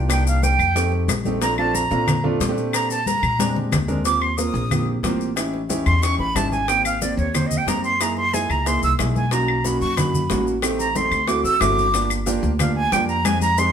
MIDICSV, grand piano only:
0, 0, Header, 1, 2, 480
1, 0, Start_track
1, 0, Tempo, 328587
1, 152, Time_signature, 4, 2, 24, 8
1, 20044, End_track
2, 0, Start_track
2, 0, Title_t, "Grand piano"
2, 0, Program_c, 0, 0
2, 125, Note_on_c, 0, 58, 79
2, 128, Note_on_c, 0, 67, 89
2, 129, Note_on_c, 0, 62, 71
2, 129, Note_on_c, 0, 63, 66
2, 908, Note_off_c, 0, 58, 0
2, 909, Note_off_c, 0, 62, 0
2, 909, Note_off_c, 0, 67, 0
2, 910, Note_off_c, 0, 63, 0
2, 1102, Note_on_c, 0, 60, 68
2, 1103, Note_on_c, 0, 57, 81
2, 1103, Note_on_c, 0, 63, 69
2, 1105, Note_on_c, 0, 67, 94
2, 1612, Note_off_c, 0, 60, 0
2, 1613, Note_off_c, 0, 57, 0
2, 1613, Note_off_c, 0, 63, 0
2, 1614, Note_off_c, 0, 67, 0
2, 1831, Note_on_c, 0, 60, 71
2, 1832, Note_on_c, 0, 57, 80
2, 1836, Note_on_c, 0, 63, 72
2, 1837, Note_on_c, 0, 67, 90
2, 2001, Note_off_c, 0, 60, 0
2, 2002, Note_off_c, 0, 57, 0
2, 2003, Note_off_c, 0, 63, 0
2, 2004, Note_off_c, 0, 67, 0
2, 2063, Note_on_c, 0, 60, 61
2, 2064, Note_on_c, 0, 62, 66
2, 2067, Note_on_c, 0, 57, 82
2, 2072, Note_on_c, 0, 65, 74
2, 2237, Note_off_c, 0, 60, 0
2, 2238, Note_off_c, 0, 62, 0
2, 2239, Note_off_c, 0, 57, 0
2, 2241, Note_off_c, 0, 65, 0
2, 2314, Note_on_c, 0, 57, 84
2, 2314, Note_on_c, 0, 60, 82
2, 2317, Note_on_c, 0, 62, 80
2, 2318, Note_on_c, 0, 65, 91
2, 2651, Note_off_c, 0, 57, 0
2, 2651, Note_off_c, 0, 60, 0
2, 2653, Note_off_c, 0, 62, 0
2, 2653, Note_off_c, 0, 65, 0
2, 2787, Note_on_c, 0, 60, 77
2, 2788, Note_on_c, 0, 57, 76
2, 2791, Note_on_c, 0, 62, 72
2, 2792, Note_on_c, 0, 65, 89
2, 3128, Note_off_c, 0, 57, 0
2, 3128, Note_off_c, 0, 60, 0
2, 3130, Note_off_c, 0, 62, 0
2, 3130, Note_off_c, 0, 65, 0
2, 3267, Note_on_c, 0, 60, 78
2, 3269, Note_on_c, 0, 57, 92
2, 3269, Note_on_c, 0, 65, 102
2, 3270, Note_on_c, 0, 62, 82
2, 3524, Note_off_c, 0, 60, 0
2, 3525, Note_off_c, 0, 57, 0
2, 3525, Note_off_c, 0, 62, 0
2, 3525, Note_off_c, 0, 65, 0
2, 3631, Note_on_c, 0, 57, 86
2, 3631, Note_on_c, 0, 60, 81
2, 3632, Note_on_c, 0, 67, 98
2, 3633, Note_on_c, 0, 62, 78
2, 4307, Note_off_c, 0, 57, 0
2, 4307, Note_off_c, 0, 60, 0
2, 4307, Note_off_c, 0, 67, 0
2, 4308, Note_off_c, 0, 62, 0
2, 4954, Note_on_c, 0, 60, 67
2, 4955, Note_on_c, 0, 62, 74
2, 4957, Note_on_c, 0, 56, 82
2, 4958, Note_on_c, 0, 67, 86
2, 5461, Note_off_c, 0, 60, 0
2, 5462, Note_off_c, 0, 62, 0
2, 5463, Note_off_c, 0, 56, 0
2, 5463, Note_off_c, 0, 67, 0
2, 5669, Note_on_c, 0, 56, 85
2, 5673, Note_on_c, 0, 60, 74
2, 5673, Note_on_c, 0, 62, 72
2, 5673, Note_on_c, 0, 70, 90
2, 5843, Note_off_c, 0, 56, 0
2, 5845, Note_off_c, 0, 60, 0
2, 5845, Note_off_c, 0, 62, 0
2, 5845, Note_off_c, 0, 70, 0
2, 5914, Note_on_c, 0, 58, 63
2, 5916, Note_on_c, 0, 65, 59
2, 5918, Note_on_c, 0, 60, 60
2, 5918, Note_on_c, 0, 67, 76
2, 6254, Note_off_c, 0, 58, 0
2, 6255, Note_off_c, 0, 65, 0
2, 6256, Note_off_c, 0, 60, 0
2, 6256, Note_off_c, 0, 67, 0
2, 6397, Note_on_c, 0, 58, 73
2, 6399, Note_on_c, 0, 70, 73
2, 6400, Note_on_c, 0, 65, 65
2, 6401, Note_on_c, 0, 60, 66
2, 6736, Note_off_c, 0, 58, 0
2, 6737, Note_off_c, 0, 70, 0
2, 6738, Note_off_c, 0, 60, 0
2, 6738, Note_off_c, 0, 65, 0
2, 6881, Note_on_c, 0, 58, 75
2, 6882, Note_on_c, 0, 60, 64
2, 6884, Note_on_c, 0, 65, 68
2, 6886, Note_on_c, 0, 67, 78
2, 7219, Note_off_c, 0, 58, 0
2, 7219, Note_off_c, 0, 60, 0
2, 7220, Note_off_c, 0, 65, 0
2, 7221, Note_off_c, 0, 67, 0
2, 7354, Note_on_c, 0, 65, 78
2, 7358, Note_on_c, 0, 60, 85
2, 7358, Note_on_c, 0, 67, 97
2, 7359, Note_on_c, 0, 58, 94
2, 7696, Note_off_c, 0, 65, 0
2, 7697, Note_off_c, 0, 60, 0
2, 7698, Note_off_c, 0, 58, 0
2, 7698, Note_off_c, 0, 67, 0
2, 7831, Note_on_c, 0, 67, 86
2, 7833, Note_on_c, 0, 61, 82
2, 7833, Note_on_c, 0, 63, 76
2, 7836, Note_on_c, 0, 64, 75
2, 8175, Note_off_c, 0, 67, 0
2, 8176, Note_off_c, 0, 61, 0
2, 8176, Note_off_c, 0, 63, 0
2, 8177, Note_off_c, 0, 64, 0
2, 8318, Note_on_c, 0, 61, 91
2, 8321, Note_on_c, 0, 63, 76
2, 8321, Note_on_c, 0, 64, 84
2, 8325, Note_on_c, 0, 67, 93
2, 8659, Note_off_c, 0, 61, 0
2, 8660, Note_off_c, 0, 63, 0
2, 8660, Note_off_c, 0, 64, 0
2, 8662, Note_off_c, 0, 67, 0
2, 8799, Note_on_c, 0, 61, 77
2, 8802, Note_on_c, 0, 63, 65
2, 8803, Note_on_c, 0, 64, 58
2, 8804, Note_on_c, 0, 67, 85
2, 9139, Note_off_c, 0, 61, 0
2, 9141, Note_off_c, 0, 63, 0
2, 9141, Note_off_c, 0, 64, 0
2, 9142, Note_off_c, 0, 67, 0
2, 9283, Note_on_c, 0, 61, 74
2, 9283, Note_on_c, 0, 63, 71
2, 9286, Note_on_c, 0, 64, 65
2, 9286, Note_on_c, 0, 67, 83
2, 9622, Note_off_c, 0, 61, 0
2, 9622, Note_off_c, 0, 63, 0
2, 9623, Note_off_c, 0, 64, 0
2, 9623, Note_off_c, 0, 67, 0
2, 9765, Note_on_c, 0, 58, 69
2, 9765, Note_on_c, 0, 60, 62
2, 9767, Note_on_c, 0, 67, 76
2, 9770, Note_on_c, 0, 63, 64
2, 10103, Note_off_c, 0, 58, 0
2, 10103, Note_off_c, 0, 60, 0
2, 10104, Note_off_c, 0, 67, 0
2, 10106, Note_off_c, 0, 63, 0
2, 10249, Note_on_c, 0, 58, 75
2, 10249, Note_on_c, 0, 60, 69
2, 10250, Note_on_c, 0, 63, 63
2, 10250, Note_on_c, 0, 67, 89
2, 10585, Note_off_c, 0, 58, 0
2, 10585, Note_off_c, 0, 60, 0
2, 10585, Note_off_c, 0, 67, 0
2, 10586, Note_off_c, 0, 63, 0
2, 10721, Note_on_c, 0, 60, 65
2, 10724, Note_on_c, 0, 58, 64
2, 10725, Note_on_c, 0, 63, 70
2, 10728, Note_on_c, 0, 67, 77
2, 11061, Note_off_c, 0, 60, 0
2, 11063, Note_off_c, 0, 58, 0
2, 11064, Note_off_c, 0, 63, 0
2, 11065, Note_off_c, 0, 67, 0
2, 11210, Note_on_c, 0, 58, 76
2, 11210, Note_on_c, 0, 67, 86
2, 11211, Note_on_c, 0, 63, 71
2, 11213, Note_on_c, 0, 60, 66
2, 11546, Note_off_c, 0, 58, 0
2, 11546, Note_off_c, 0, 63, 0
2, 11546, Note_off_c, 0, 67, 0
2, 11547, Note_off_c, 0, 60, 0
2, 11698, Note_on_c, 0, 63, 59
2, 11699, Note_on_c, 0, 58, 67
2, 11702, Note_on_c, 0, 68, 80
2, 11703, Note_on_c, 0, 64, 64
2, 12030, Note_off_c, 0, 58, 0
2, 12030, Note_off_c, 0, 63, 0
2, 12031, Note_off_c, 0, 68, 0
2, 12032, Note_off_c, 0, 64, 0
2, 12173, Note_on_c, 0, 58, 67
2, 12173, Note_on_c, 0, 64, 68
2, 12174, Note_on_c, 0, 63, 68
2, 12177, Note_on_c, 0, 68, 84
2, 12507, Note_off_c, 0, 58, 0
2, 12507, Note_off_c, 0, 64, 0
2, 12508, Note_off_c, 0, 63, 0
2, 12509, Note_off_c, 0, 68, 0
2, 12650, Note_on_c, 0, 58, 74
2, 12652, Note_on_c, 0, 64, 66
2, 12653, Note_on_c, 0, 63, 64
2, 12655, Note_on_c, 0, 68, 83
2, 12985, Note_off_c, 0, 58, 0
2, 12987, Note_off_c, 0, 63, 0
2, 12987, Note_off_c, 0, 64, 0
2, 12988, Note_off_c, 0, 68, 0
2, 13130, Note_on_c, 0, 58, 76
2, 13131, Note_on_c, 0, 63, 68
2, 13133, Note_on_c, 0, 64, 65
2, 13133, Note_on_c, 0, 68, 78
2, 13465, Note_off_c, 0, 58, 0
2, 13465, Note_off_c, 0, 63, 0
2, 13467, Note_off_c, 0, 64, 0
2, 13467, Note_off_c, 0, 68, 0
2, 13615, Note_on_c, 0, 58, 71
2, 13617, Note_on_c, 0, 66, 80
2, 13618, Note_on_c, 0, 61, 61
2, 13620, Note_on_c, 0, 63, 68
2, 13947, Note_off_c, 0, 58, 0
2, 13948, Note_off_c, 0, 66, 0
2, 13949, Note_off_c, 0, 61, 0
2, 13950, Note_off_c, 0, 63, 0
2, 14095, Note_on_c, 0, 63, 66
2, 14098, Note_on_c, 0, 61, 71
2, 14099, Note_on_c, 0, 66, 82
2, 14100, Note_on_c, 0, 58, 79
2, 14427, Note_off_c, 0, 63, 0
2, 14428, Note_off_c, 0, 61, 0
2, 14429, Note_off_c, 0, 58, 0
2, 14429, Note_off_c, 0, 66, 0
2, 14573, Note_on_c, 0, 58, 66
2, 14573, Note_on_c, 0, 61, 58
2, 14573, Note_on_c, 0, 63, 72
2, 14575, Note_on_c, 0, 66, 79
2, 14905, Note_off_c, 0, 58, 0
2, 14905, Note_off_c, 0, 61, 0
2, 14905, Note_off_c, 0, 63, 0
2, 14906, Note_off_c, 0, 66, 0
2, 15042, Note_on_c, 0, 61, 66
2, 15043, Note_on_c, 0, 58, 80
2, 15047, Note_on_c, 0, 63, 62
2, 15047, Note_on_c, 0, 66, 91
2, 15379, Note_off_c, 0, 61, 0
2, 15380, Note_off_c, 0, 58, 0
2, 15382, Note_off_c, 0, 63, 0
2, 15382, Note_off_c, 0, 66, 0
2, 15520, Note_on_c, 0, 60, 87
2, 15520, Note_on_c, 0, 63, 77
2, 15521, Note_on_c, 0, 57, 87
2, 15523, Note_on_c, 0, 67, 101
2, 15857, Note_off_c, 0, 60, 0
2, 15858, Note_off_c, 0, 57, 0
2, 15858, Note_off_c, 0, 63, 0
2, 15859, Note_off_c, 0, 67, 0
2, 16002, Note_on_c, 0, 60, 68
2, 16003, Note_on_c, 0, 57, 71
2, 16006, Note_on_c, 0, 67, 83
2, 16007, Note_on_c, 0, 63, 71
2, 16338, Note_off_c, 0, 57, 0
2, 16338, Note_off_c, 0, 60, 0
2, 16340, Note_off_c, 0, 63, 0
2, 16340, Note_off_c, 0, 67, 0
2, 16472, Note_on_c, 0, 60, 67
2, 16474, Note_on_c, 0, 66, 80
2, 16475, Note_on_c, 0, 57, 73
2, 16476, Note_on_c, 0, 64, 61
2, 16813, Note_off_c, 0, 60, 0
2, 16813, Note_off_c, 0, 66, 0
2, 16814, Note_off_c, 0, 57, 0
2, 16814, Note_off_c, 0, 64, 0
2, 16958, Note_on_c, 0, 60, 67
2, 16961, Note_on_c, 0, 57, 77
2, 16964, Note_on_c, 0, 64, 70
2, 16964, Note_on_c, 0, 66, 86
2, 17295, Note_off_c, 0, 60, 0
2, 17296, Note_off_c, 0, 57, 0
2, 17298, Note_off_c, 0, 64, 0
2, 17298, Note_off_c, 0, 66, 0
2, 17437, Note_on_c, 0, 58, 75
2, 17437, Note_on_c, 0, 62, 68
2, 17443, Note_on_c, 0, 65, 65
2, 17443, Note_on_c, 0, 67, 75
2, 17773, Note_off_c, 0, 58, 0
2, 17774, Note_off_c, 0, 62, 0
2, 17776, Note_off_c, 0, 65, 0
2, 17777, Note_off_c, 0, 67, 0
2, 17912, Note_on_c, 0, 58, 96
2, 17916, Note_on_c, 0, 62, 87
2, 17917, Note_on_c, 0, 65, 79
2, 17919, Note_on_c, 0, 67, 111
2, 18251, Note_off_c, 0, 58, 0
2, 18253, Note_off_c, 0, 62, 0
2, 18253, Note_off_c, 0, 65, 0
2, 18254, Note_off_c, 0, 67, 0
2, 18403, Note_on_c, 0, 58, 71
2, 18405, Note_on_c, 0, 62, 70
2, 18405, Note_on_c, 0, 65, 67
2, 18408, Note_on_c, 0, 67, 78
2, 18735, Note_off_c, 0, 58, 0
2, 18736, Note_off_c, 0, 62, 0
2, 18736, Note_off_c, 0, 65, 0
2, 18738, Note_off_c, 0, 67, 0
2, 18885, Note_on_c, 0, 67, 84
2, 18886, Note_on_c, 0, 62, 68
2, 18887, Note_on_c, 0, 58, 86
2, 18889, Note_on_c, 0, 65, 71
2, 19216, Note_off_c, 0, 62, 0
2, 19216, Note_off_c, 0, 67, 0
2, 19217, Note_off_c, 0, 58, 0
2, 19218, Note_off_c, 0, 65, 0
2, 19359, Note_on_c, 0, 67, 80
2, 19360, Note_on_c, 0, 56, 73
2, 19362, Note_on_c, 0, 60, 60
2, 19365, Note_on_c, 0, 63, 64
2, 19692, Note_off_c, 0, 56, 0
2, 19692, Note_off_c, 0, 67, 0
2, 19693, Note_off_c, 0, 60, 0
2, 19695, Note_off_c, 0, 63, 0
2, 19839, Note_on_c, 0, 60, 69
2, 19841, Note_on_c, 0, 56, 84
2, 19844, Note_on_c, 0, 63, 74
2, 19844, Note_on_c, 0, 67, 79
2, 20044, Note_off_c, 0, 56, 0
2, 20044, Note_off_c, 0, 60, 0
2, 20044, Note_off_c, 0, 63, 0
2, 20044, Note_off_c, 0, 67, 0
2, 20044, End_track
0, 0, End_of_file